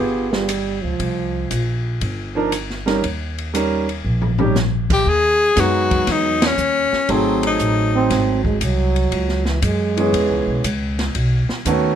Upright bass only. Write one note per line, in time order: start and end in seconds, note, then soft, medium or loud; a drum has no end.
0.00 0.79 G1 medium
0.84 0.98 C#2 medium
1.00 1.47 C2 medium
1.50 1.97 A#1 medium
2.01 2.99 G1 medium
3.03 4.00 D#2 medium
4.05 5.02 A#1 medium
5.06 5.55 D#2 medium
5.57 6.06 F#2 medium
6.07 6.57 E2 medium
6.57 6.90 D#2 medium
6.92 muted upright bass stroke soft
7.09 7.58 G#1 medium
7.59 8.08 A1 medium
8.10 8.59 G#1 medium
8.61 9.10 C2 medium
9.12 9.61 C#2 medium
9.62 10.12 F#2 medium
10.13 10.30 E2 medium
10.30 10.46 C#2 medium
10.47 10.63 B1 medium
10.64 11.13 C#2 medium
11.14 11.47 B1 medium
11.48 muted upright bass stroke soft
11.65 11.95 D#2 medium